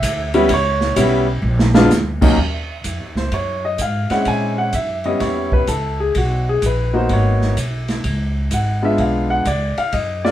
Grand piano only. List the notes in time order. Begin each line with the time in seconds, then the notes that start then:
Already playing: E5
0.34 G3 B3 C#4 E4
0.54 C#5
0.96 G3 B3 C#4 E4
1.74 G#3 B3 D4 F4
2.21 D#2 F#3 A#3 C#4 D#4
3.17 C5
3.34 C#5
3.65 D#5
3.82 F5
4.11 G#3 C4 C#4 E4 F#5
4.28 G#5
4.58 F#5
4.74 E5
5.05 G3 B3 C#4 E4 D#5
5.21 C#5
5.53 B4
5.68 A4
6.00 G#4
6.17 F#4
6.49 G#4
6.66 B4
6.93 A#3 B3 D#4 F#4 C5
7.13 C#5
8.54 F#5
8.82 G#3 B3 D4 F4 E5
9.00 F5
9.30 F#5
9.47 D5
9.78 F5
9.93 D#5
10.24 G#3 A#3 C#4 F4 D5